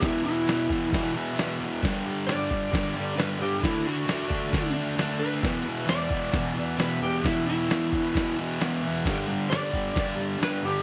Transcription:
0.00 0.44 E2 loud
0.00 0.25 B2 loud
0.00 0.21 E3 loud
0.00 kick loud
0.00 snare loud
0.00 crash medium
0.05 0.24 E4 loud
0.23 0.48 E3 medium
0.23 1.13 E4 loud
0.27 0.46 B2 medium
0.45 0.71 E2 medium
0.45 0.69 B2 medium
0.45 crash medium
0.49 0.66 E3 medium
0.49 snare loud
0.67 0.92 B2 medium
0.67 0.94 E3 loud
0.67 kick medium
0.72 0.89 E2 medium
0.90 1.35 E2 medium
0.90 1.16 B2 medium
0.90 kick loud
0.90 crash medium
0.94 1.12 E3 medium
0.94 snare loud
1.13 1.40 E3 medium
1.18 1.37 B2 medium
1.36 1.81 E2 medium
1.36 1.64 B2 loud
1.36 snare loud
1.36 crash medium
1.41 1.59 E3 loud
1.60 1.82 E3 medium
1.65 1.84 B2 medium
1.83 2.27 G2 medium
1.83 2.09 D3 loud
1.83 kick loud
1.83 snare loud
1.83 crash medium
1.87 2.05 G3 loud
2.06 2.31 G3 medium
2.10 2.30 D3 medium
2.27 2.53 G2 medium
2.27 3.15 D5 loud
2.27 snare loud
2.27 crash medium
2.31 2.51 D3 medium
2.31 2.48 G3 medium
2.49 2.74 D3 medium
2.49 2.75 G3 medium
2.49 kick medium
2.54 2.71 G2 medium
2.72 3.15 G2 medium
2.72 2.98 D3 medium
2.72 kick loud
2.72 snare loud
2.72 crash medium
2.77 2.93 G3 medium
2.95 3.20 G3 medium
2.99 3.17 D3 medium
3.16 3.61 G2 medium
3.16 3.42 D3 loud
3.16 3.40 B4 medium
3.16 snare loud
3.16 crash medium
3.21 3.37 G3 loud
3.39 3.61 G3 medium
3.39 3.63 G4 loud
3.43 3.59 D3 medium
3.60 4.05 D3 medium
3.60 3.87 A3 loud
3.60 3.85 E4 medium
3.60 kick loud
3.60 crash medium
3.64 3.83 D4 medium
3.64 snare loud
3.84 4.10 D4 medium
3.84 4.74 F#4 loud
3.88 4.07 A3 medium
4.07 4.31 D3 medium
4.07 4.29 A3 medium
4.07 snare loud
4.07 crash medium
4.11 4.26 D4 medium
4.27 4.51 A3 medium
4.27 4.53 D4 medium
4.27 kick medium
4.32 4.49 D3 medium
4.50 4.95 D3 medium
4.50 4.77 A3 medium
4.50 kick loud
4.50 crash medium
4.54 4.72 D4 medium
4.54 snare loud
4.73 4.99 D4 medium
4.78 4.97 A3 medium
4.96 5.41 D3 medium
4.96 5.22 A3 medium
4.96 snare loud
4.96 crash medium
5.00 5.18 D4 loud
5.19 5.41 D4 medium
5.19 5.42 B4 loud
5.24 5.44 A3 medium
5.40 5.85 E2 medium
5.40 5.67 B2 medium
5.40 kick loud
5.40 crash medium
5.45 5.63 E3 loud
5.45 snare loud
5.64 5.89 E3 medium
5.69 5.87 B2 medium
5.86 6.13 E2 medium
5.86 6.10 B2 medium
5.86 6.77 D5 loud
5.86 snare loud
5.86 crash medium
5.90 6.08 E3 medium
6.08 6.33 B2 medium
6.08 6.35 E3 loud
6.08 kick medium
6.14 6.31 E2 medium
6.32 6.76 E2 medium
6.32 6.58 B2 medium
6.32 kick loud
6.32 snare loud
6.32 crash medium
6.36 6.53 E3 medium
6.54 6.80 E3 medium
6.59 6.79 B2 medium
6.77 7.21 E2 medium
6.77 7.04 B2 loud
6.77 7.02 B4 loud
6.77 snare loud
6.77 crash medium
6.81 6.99 E3 loud
7.00 7.26 E3 medium
7.00 7.24 G4 medium
7.05 7.24 B2 medium
7.23 7.68 E2 medium
7.23 7.50 B2 loud
7.23 7.46 E4 loud
7.23 kick loud
7.23 snare loud
7.23 crash medium
7.28 7.45 E3 loud
7.46 7.73 E3 medium
7.46 8.35 E4 loud
7.51 7.70 B2 medium
7.70 7.94 E2 medium
7.70 7.93 B2 medium
7.70 snare loud
7.70 crash medium
7.74 7.90 E3 medium
7.91 8.16 B2 medium
7.91 8.18 E3 loud
7.91 kick medium
7.96 8.13 E2 medium
8.14 8.58 E2 medium
8.14 8.40 B2 medium
8.14 kick loud
8.14 snare loud
8.14 crash medium
8.19 8.36 E3 medium
8.37 8.62 E3 medium
8.41 8.60 B2 medium
8.59 9.04 E2 medium
8.59 8.86 B2 loud
8.59 snare loud
8.59 crash medium
8.64 8.82 E3 loud
8.83 9.04 E3 medium
8.88 9.07 B2 medium
9.05 9.49 G2 medium
9.05 9.31 D3 loud
9.05 kick loud
9.05 snare loud
9.05 crash medium
9.09 9.27 G3 loud
9.28 9.53 G3 medium
9.33 9.50 D3 medium
9.50 9.75 G2 medium
9.50 9.73 D3 medium
9.50 10.38 D5 loud
9.50 snare loud
9.50 crash medium
9.54 9.70 G3 medium
9.71 9.96 D3 medium
9.71 9.97 G3 medium
9.71 kick medium
9.76 9.93 G2 medium
9.94 10.37 G2 medium
9.94 10.20 D3 medium
9.94 kick loud
9.94 snare loud
9.94 crash medium
9.98 10.15 G3 medium
10.16 10.42 G3 medium
10.21 10.40 D3 medium
10.38 10.83 G2 loud
10.38 10.66 D3 loud
10.38 crash medium
10.43 10.62 G3 loud
10.43 10.64 B4 medium
10.43 snare loud
10.63 10.83 D3 medium
10.63 10.83 G3 medium
10.63 10.83 G4 loud

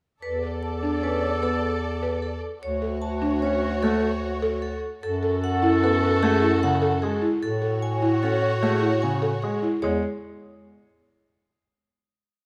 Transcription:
0.22 2.51 E2 medium
0.22 2.39 A4 medium
0.22 0.49 B4 medium
0.22 2.39 D5 medium
0.43 0.69 B4 medium
0.63 0.89 A5 medium
0.83 1.09 D4 medium
1.03 1.29 C#4 medium
1.03 1.29 B4 medium
1.22 1.49 C#5 medium
1.42 1.69 B3 medium
1.42 1.69 A4 medium
2.02 2.29 B4 medium
2.22 2.49 A4 medium
2.62 4.91 D2 medium
2.62 4.78 F#4 medium
2.62 4.78 C#5 medium
2.62 2.89 C#5 medium
2.82 3.08 A4 medium
3.02 3.28 A5 medium
3.22 3.48 D4 medium
3.42 3.69 C#4 medium
3.42 3.69 C#5 medium
3.62 3.89 C#5 medium
3.83 4.09 A3 medium
3.83 4.09 A4 medium
4.42 4.69 A4 medium
4.62 4.89 A4 medium
5.02 7.31 F#2 medium
5.02 7.19 F#4 medium
5.02 7.19 A4 medium
5.02 5.29 A4 medium
5.23 5.49 A4 medium
5.44 5.69 F#5 medium
5.63 5.89 E4 medium
5.83 6.09 B3 medium
5.83 6.09 A4 medium
6.03 6.29 B4 medium
6.23 6.49 A3 medium
6.23 6.49 G#4 loud
6.42 6.69 E4 medium
6.63 6.89 C#3 medium
6.63 6.89 F#5 medium
6.82 7.08 A4 medium
7.02 7.29 G#3 medium
7.02 7.29 G#4 medium
7.22 7.48 E4 medium
7.42 9.71 A2 medium
7.42 9.58 F#4 medium
7.42 9.59 F#4 medium
7.42 7.69 A4 medium
7.42 9.59 C#5 medium
7.62 7.88 A4 medium
7.82 8.09 G#5 medium
8.02 8.29 E4 medium
8.23 8.49 C#4 medium
8.23 8.49 A4 medium
8.42 8.69 C#5 medium
8.63 8.89 A3 medium
8.63 8.89 G#4 medium
8.82 9.08 E4 medium
9.02 9.29 C#3 medium
9.02 9.28 G#5 medium
9.22 9.49 A4 medium
9.42 9.69 G#3 medium
9.42 9.69 G#4 medium
9.63 9.89 E4 medium
9.82 10.01 E2 medium
9.82 10.02 G#3 medium
9.82 10.01 G#4 medium
9.82 10.01 C#5 medium

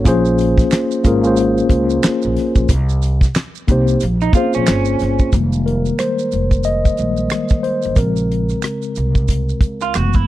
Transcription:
0.04 0.61 A#1 loud
0.04 0.97 A#3 loud
0.04 0.98 C#4 loud
0.04 0.98 F4 loud
0.04 0.99 G#4 loud
0.04 kick loud
0.04 closed hi-hat medium
0.04 maracas medium
0.08 0.99 C5 loud
0.25 maracas soft
0.38 closed hi-hat medium
0.38 maracas soft
0.58 kick loud
0.58 snare soft
0.58 maracas medium
0.71 finger snap medium
0.71 snare loud
0.71 clap medium
0.71 closed hi-hat medium
0.71 maracas medium
0.91 maracas soft
1.03 1.60 G#1 loud
1.03 1.22 A#3 medium
1.03 1.22 C#4 medium
1.03 1.23 F4 medium
1.03 1.23 G#4 medium
1.03 1.24 A#4 medium
1.03 kick medium
1.03 closed hi-hat medium
1.03 maracas medium
1.23 2.42 A#3 medium
1.23 2.43 C#4 medium
1.23 2.43 F4 medium
1.23 2.44 G#4 medium
1.23 2.44 C5 loud
1.23 maracas soft
1.37 closed hi-hat medium
1.37 maracas medium
1.58 maracas soft
1.69 1.98 C#2 medium
1.69 kick medium
1.69 closed hi-hat medium
1.69 maracas soft
1.90 maracas soft
2.03 finger snap medium
2.03 muted upright bass stroke soft
2.03 snare loud
2.03 clap medium
2.03 closed hi-hat medium
2.03 maracas medium
2.22 2.35 A#1 medium
2.22 maracas soft
2.37 snare soft
2.37 closed hi-hat medium
2.55 2.67 A#1 medium
2.55 kick loud
2.55 maracas medium
2.69 3.24 C2 loud
2.69 kick loud
2.69 closed hi-hat medium
2.69 maracas medium
2.89 maracas soft
3.02 closed hi-hat medium
3.02 maracas soft
3.21 kick loud
3.21 snare soft
3.21 maracas medium
3.35 finger snap medium
3.35 snare loud
3.35 clap medium
3.35 closed hi-hat medium
3.35 maracas medium
3.55 maracas medium
3.68 3.96 C2 loud
3.68 4.01 A#3 medium
3.68 4.01 C4 medium
3.68 4.02 D#4 medium
3.68 4.02 G4 medium
3.68 4.03 C5 medium
3.68 kick medium
3.68 closed hi-hat medium
3.68 maracas soft
3.88 maracas soft
4.00 4.30 A#1 loud
4.00 closed hi-hat medium
4.00 maracas medium
4.21 4.34 D#4 medium
4.21 maracas soft
4.33 5.26 A#3 medium
4.33 4.42 C4 medium
4.33 4.53 F4 medium
4.33 5.27 F4 medium
4.33 5.27 G#4 medium
4.33 5.28 C5 loud
4.33 kick loud
4.33 closed hi-hat medium
4.33 maracas soft
4.41 5.30 C#4 medium
4.53 4.66 A#1 medium
4.53 5.29 C#4 medium
4.53 maracas medium
4.67 4.95 G1 medium
4.67 finger snap medium
4.67 snare loud
4.67 clap medium
4.67 closed hi-hat medium
4.67 maracas medium
4.85 maracas soft
4.99 5.17 G1 medium
4.99 snare soft
4.99 closed hi-hat medium
4.99 maracas soft
5.19 kick medium
5.19 maracas soft
5.32 5.88 F1 loud
5.32 6.28 D#3 medium
5.32 6.28 G3 medium
5.32 6.29 G#3 soft
5.32 6.29 A#3 medium
5.32 kick loud
5.32 closed hi-hat medium
5.32 maracas medium
5.52 maracas soft
5.66 6.00 A#4 medium
5.66 closed hi-hat medium
5.86 maracas soft
5.99 6.67 C5 medium
5.99 finger snap medium
5.99 cross-stick medium
5.99 closed hi-hat medium
5.99 maracas medium
6.19 maracas soft
6.32 6.87 F1 medium
6.32 closed hi-hat medium
6.32 maracas soft
6.51 kick medium
6.51 maracas soft
6.64 7.67 D#5 loud
6.64 closed hi-hat medium
6.64 maracas medium
6.85 kick medium
6.85 maracas soft
6.97 7.26 A#1 medium
6.97 7.28 D#3 soft
6.97 7.28 G3 soft
6.97 7.28 G#3 soft
6.97 7.28 A#3 soft
6.97 closed hi-hat medium
6.97 maracas soft
7.17 maracas soft
7.30 finger snap medium
7.30 cross-stick loud
7.30 closed hi-hat medium
7.30 maracas medium
7.49 kick medium
7.49 maracas soft
7.63 7.78 C5 medium
7.63 muted upright bass stroke soft
7.63 closed hi-hat medium
7.82 7.96 G1 medium
7.82 closed hi-hat soft
7.82 maracas soft
7.96 8.52 A#1 loud
7.96 8.92 C#3 medium
7.96 8.92 G#3 medium
7.96 8.92 C4 medium
7.96 9.24 A#4 medium
7.96 kick loud
7.96 closed hi-hat medium
7.96 maracas medium
8.16 maracas soft
8.32 closed hi-hat medium
8.49 cross-stick soft
8.49 maracas soft
8.62 finger snap medium
8.62 cross-stick loud
8.62 closed hi-hat medium
8.62 maracas medium
8.82 maracas soft
8.96 9.51 C2 medium
8.96 closed hi-hat medium
8.96 maracas soft
9.15 kick medium
9.15 maracas soft
9.28 kick medium
9.28 closed hi-hat medium
9.28 maracas medium
9.49 maracas soft
9.61 9.98 C#2 medium
9.61 kick medium
9.61 closed hi-hat medium
9.61 maracas soft
9.81 9.96 F4 medium
9.81 maracas soft
9.94 10.23 F#1 medium
9.94 10.27 E3 medium
9.94 10.27 G#3 soft
9.94 10.27 A3 soft
9.94 10.27 B3 medium
9.94 10.15 F#4 medium
9.94 finger snap medium
9.94 cross-stick loud
9.94 closed hi-hat medium
9.94 maracas medium
10.13 10.27 E4 medium
10.13 kick medium
10.13 maracas soft

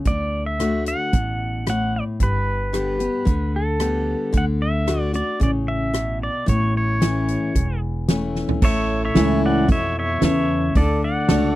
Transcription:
0.05 0.92 D2 medium
0.05 0.58 D3 medium
0.05 0.44 D5 medium
0.05 kick medium
0.05 closed hi-hat soft
0.46 0.83 E5 medium
0.59 1.10 D3 medium
0.59 1.10 A3 medium
0.59 1.11 D4 medium
0.59 1.11 F#4 medium
0.59 cross-stick medium
0.59 closed hi-hat medium
0.86 1.69 F#5 loud
0.86 closed hi-hat medium
1.13 2.00 A1 medium
1.13 1.64 B2 medium
1.13 kick loud
1.13 closed hi-hat medium
1.66 2.17 A2 medium
1.66 1.96 F#5 medium
1.66 cross-stick loud
1.66 closed hi-hat medium
1.96 2.03 D5 medium
2.20 3.07 G1 medium
2.20 3.22 G2 medium
2.20 3.59 B4 medium
2.20 kick medium
2.20 closed hi-hat medium
2.73 2.99 D3 medium
2.73 2.99 G3 medium
2.73 2.99 B3 medium
2.73 2.98 G4 medium
2.73 cross-stick medium
2.73 closed hi-hat medium
2.99 3.26 B3 soft
2.99 3.25 G4 soft
2.99 closed hi-hat medium
3.25 4.13 D2 medium
3.25 3.78 D3 medium
3.25 kick loud
3.25 closed hi-hat medium
3.56 4.31 A4 medium
3.80 4.31 D3 medium
3.80 4.31 G3 medium
3.80 4.32 B3 medium
3.80 4.32 G4 medium
3.80 cross-stick loud
3.80 closed hi-hat medium
4.33 5.20 D2 medium
4.33 4.86 D3 medium
4.33 kick medium
4.33 closed hi-hat soft
4.38 4.44 F#5 loud
4.62 5.11 E5 medium
4.87 5.13 D3 medium
4.87 5.13 A3 medium
4.87 5.14 D4 medium
4.87 5.12 F#4 medium
4.87 cross-stick loud
4.87 closed hi-hat medium
5.13 5.41 D4 soft
5.13 5.40 F#4 soft
5.13 5.42 D5 medium
5.13 closed hi-hat medium
5.40 6.28 A1 medium
5.40 5.91 C#3 medium
5.40 5.50 D5 medium
5.40 kick medium
5.40 closed hi-hat soft
5.68 6.18 E5 medium
5.94 6.45 B2 medium
5.94 cross-stick loud
5.94 closed hi-hat medium
6.23 6.49 D5 medium
6.46 7.34 A1 medium
6.46 7.49 A2 medium
6.46 6.74 C#5 medium
6.46 kick medium
6.46 closed hi-hat medium
6.77 7.79 C#5 medium
7.00 7.52 E3 medium
7.00 7.52 A3 medium
7.00 7.53 C#4 medium
7.00 7.53 E4 medium
7.00 snare loud
7.00 closed hi-hat medium
7.28 closed hi-hat medium
7.55 8.42 E1 medium
7.55 8.57 E2 medium
7.55 kick loud
7.55 closed hi-hat medium
8.08 8.59 E3 medium
8.08 8.60 A3 medium
8.08 8.60 C#4 medium
8.08 8.60 E4 medium
8.08 snare loud
8.08 closed hi-hat medium
8.35 snare medium
8.49 floor tom medium
8.62 9.14 A1 medium
8.62 9.64 A2 medium
8.62 10.74 A4 medium
8.62 10.75 C#5 medium
8.62 9.01 C#5 medium
8.62 9.04 E5 loud
8.62 kick loud
8.62 crash loud
9.05 9.41 C#5 medium
9.05 9.45 E5 medium
9.14 9.67 C#2 medium
9.14 9.66 E3 medium
9.14 9.67 A3 medium
9.14 9.67 C#4 loud
9.14 9.56 E4 medium
9.14 9.67 E4 loud
9.14 9.56 A4 medium
9.14 9.57 C#5 medium
9.14 snare loud
9.14 open hi-hat medium
9.46 9.69 D5 medium
9.46 9.71 F#5 loud
9.68 10.20 F2 medium
9.68 9.95 C#5 medium
9.68 9.98 E5 loud
9.68 kick loud
9.68 open hi-hat soft
9.99 10.22 C#5 medium
9.99 10.24 E5 loud
10.21 10.74 E2 loud
10.21 10.73 C#3 medium
10.21 10.63 E4 medium
10.21 10.63 A4 medium
10.21 10.63 B4 medium
10.21 10.79 E5 medium
10.21 snare loud
10.21 open hi-hat medium
10.26 10.74 C#5 medium
10.75 11.28 D2 medium
10.75 11.55 D3 medium
10.75 11.02 A4 medium
10.75 11.04 D5 medium
10.75 kick loud
10.75 open hi-hat medium
11.04 11.55 D5 medium
11.04 11.55 F#5 medium
11.28 11.55 C#2 medium
11.28 11.55 A3 loud
11.28 11.55 D4 medium
11.28 11.55 F#4 medium
11.28 11.55 F#4 loud
11.28 11.55 A4 medium
11.28 11.49 C#5 medium
11.28 11.55 D5 medium
11.28 snare loud
11.28 open hi-hat medium
11.49 11.55 D5 medium

